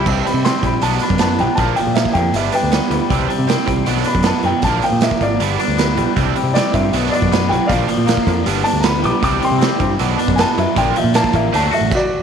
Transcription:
<<
  \new Staff \with { instrumentName = "Upright piano" } { \time 4/4 \key c \lydian \tempo 4 = 157 r8 b''8 c'''8 b''8 a''8 b''8 a''8 g''8 | a''8 g''8 e''8 g''8 e''8 <b' g''>4.~ | <b' g''>8 r2 b''8 a''8 g''8 | a''8 g''8 e''8 d''8 r2 |
r4 d''8 e''4 d''4 g''8 | <d'' f''>2 r8 a''8 <bes'' b''>8 d'''8 | d'''8 <g'' c'''>4. r4 <aes'' a''>8 e''8 | g''8 e''8 a''8 e''8 a''8 e''8 <fis' d''>4 | }
  \new Staff \with { instrumentName = "String machine" } { \time 4/4 \key c \lydian << { r1 | r1 | r1 | r1 |
d''1~ | d''2 b'2 | d''1~ | d''2. r4 | } \\ { r1 | r1 | r1 | r1 |
<c' g'>2 <b fis'>2 | <bes f'>2 <g d'>2 | <c' g'>2 <b fis'>2 | <bes f'>2 <e' fis'>4 r4 | } >> }
  \new Staff \with { instrumentName = "Overdriven electric guitar" } { \time 4/4 \key c \lydian <g c' d'>8 <g c'>8 <g c'>8 <g c'>8 <fis b d'>8 <fis b>8 <fis b>8 <fis b>8 | <f bes d'>8 <f bes>8 <f bes>8 <f bes>8 <g b d'>8 <g b>8 <g b>8 <g b>8 | <g c' d'>8 <g c'>8 <g c'>8 <g c'>8 <fis b d'>8 <fis b>8 <fis b>8 <fis b>8 | <f bes d'>8 <f bes>8 <f bes>8 <f bes>8 <g b d'>8 <g b>8 <g b>8 <g b>8 |
<g c' d'>8 <g c'>8 <g c'>8 <g c'>8 <fis b d'>8 <fis b>8 <fis b>8 <fis b>8 | <f bes d'>8 <f bes>8 <f bes>8 <f bes>8 <g b d'>8 <g b>8 <g b>8 <g b>8 | <g c' d'>8 <g c'>8 <g c'>8 <g c'>8 <fis b d'>8 <fis b>8 <fis b>8 <fis b>8 | <f bes d'>8 <f bes>8 <f bes>8 <f bes>8 <fis a d'>8 <fis a>8 r4 | }
  \new Staff \with { instrumentName = "Clean electric guitar" } { \clef bass \time 4/4 \key c \lydian c8 g8 c'8 c8 b,8 d'8 b8 fis8 | bes,8 f8 bes8 d8 g,8 d'8 b8 g8 | c8 g8 c'8 c8 b,8 d'8 b8 fis8 | bes,8 f8 bes8 d8 g,8 d'8 b8 g8 |
c8 g8 c'8 c8 b,8 d'8 b8 fis8 | bes,8 f8 bes8 d8 g,8 d'8 b8 g8 | c8 g8 c'8 c8 b,8 d'8 b8 fis8 | bes,8 f8 bes8 bes,8 d8 fis'8 r4 | }
  \new Staff \with { instrumentName = "Picked electric bass" } { \clef bass \time 4/4 \key c \lydian c,8 r16 c8 r16 bes,,8 b,,8 r16 fis,8. b,,16 r16 | bes,,8 r16 bes,8 r16 f,8 g,,8 r16 d,8 r16 d,16 r16 | c,8 r16 c8 r16 c,8 b,,8 r16 fis,8 r16 fis,16 r16 | bes,,8 r16 bes,8 r16 aes,,8 g,,8 r16 d,8. b,,16 r16 |
c,8 r16 c8 r16 g,8 b,,8 r16 fis,8. b,,16 r16 | bes,,8 r16 bes,8 r16 f,8 g,,8 r16 d,8. b,,16 r16 | c,8 r16 c8 r16 g,8 b,,8 r16 fis,8 r16 fis,16 r16 | bes,,8 r16 bes,8 r16 a,,8 d,8 r16 a,,16 r4 | }
  \new DrumStaff \with { instrumentName = "Drums" } \drummode { \time 4/4 <cymc bd>8 hh8 <hh sn>8 <hh bd>8 hh16 sn16 hh16 bd16 <hh sn>8 hh8 | <hh bd>8 hh8 <hh sn>16 bd16 <hh bd>8 hh8 hh8 <hh sn>8 hh8 | <hh bd>8 hh8 <hh sn>8 <hh bd>8 hh16 sn16 hh16 bd16 <hh sn>8 hh8 | <hh bd>8 hh8 <hh sn>16 bd16 <hh bd>8 hh8 hh8 <hh sn>8 hh8 |
<hh bd>8 hh8 <hh sn>8 <hh bd>8 hh16 sn16 hh16 bd16 <hh sn>8 hh8 | <hh bd>8 hh8 <hh sn>16 bd16 <hh bd>8 hh8 hh8 <hh sn>8 hh8 | <hh bd>8 hh8 <hh sn>8 <hh bd>8 hh8 hh16 bd16 <hh sn>8 hh8 | <hh bd>8 hh8 <hh sn>16 bd16 <hh bd>8 hh8 hh8 <cymc bd>4 | }
>>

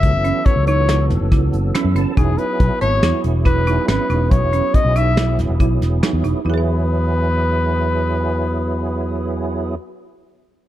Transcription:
<<
  \new Staff \with { instrumentName = "Trumpet" } { \time 5/4 \key e \major \tempo 4 = 140 e''4 cis''8 cis''4 r2 r8 | gis'8 b'4 cis''4 r8 b'4 b'4 | cis''4 dis''8 e''4 r2 r8 | b'1~ b'4~ |
b'1~ b'4 | }
  \new Staff \with { instrumentName = "Marimba" } { \time 5/4 \key e \major r8 cis'4 dis'8 e'4 e'4 cis'8 cis'8 | dis'4 r8 b8 e'4 e'8 dis'8 cis'8 dis'8~ | dis'8 cis'4 dis'8 e'4 e'4 dis'8 dis'8 | <e' gis' b' e''>1~ <e' gis' b' e''>4~ |
<e' gis' b' e''>1~ <e' gis' b' e''>4 | }
  \new Staff \with { instrumentName = "Tonewheel organ" } { \time 5/4 \key e \major r1 e''8 a''8 | r1 r4 | r1 r4 | r1 r4 |
r1 r4 | }
  \new Staff \with { instrumentName = "Tonewheel organ" } { \time 5/4 \key e \major <e fis b a'>1~ <e fis b a'>4 | <fis b e' gis'>1~ <fis b e' gis'>4~ | <fis b e' gis'>1~ <fis b e' gis'>4 | <fis b e' gis'>1~ <fis b e' gis'>4~ |
<fis b e' gis'>1~ <fis b e' gis'>4 | }
  \new Staff \with { instrumentName = "Fingered electric bass" } { \clef bass \time 5/4 \key e \major cis,16 fis,,8 r8 cis,4~ cis,16 fis,,16 fis,,16 cis,8 fis,,8 r16 fis,16 fis,,16 r16 | e,,8 r8 b,,16 r16 gis,,8 e,16 r16 e,,4. gis,,16 r16 e,,8 | b,,16 e,,8 r8 b,,4~ b,,16 e,,16 e,,16 b,,8 e,,8 r16 e,16 e,,16 r16 | e,1~ e,4~ |
e,1~ e,4 | }
  \new DrumStaff \with { instrumentName = "Drums" } \drummode { \time 5/4 <hh bd>8 hh8 <hh bd>8 hh8 <hh sn>8 <hh sn>8 <hh bd sn>8 hh8 <hh sn>8 hh8 | <hh bd>8 hh8 <hh bd>8 hh8 <hh sn>8 hh8 <hh bd>8 hh8 <hh sn>8 hh8 | <hh bd>8 hh8 <hh bd>8 hh8 <hh sn>8 <hh sn>8 <hh bd>8 <hh sn>8 <hh sn>8 hh8 | r4 r4 r4 r4 r4 |
r4 r4 r4 r4 r4 | }
>>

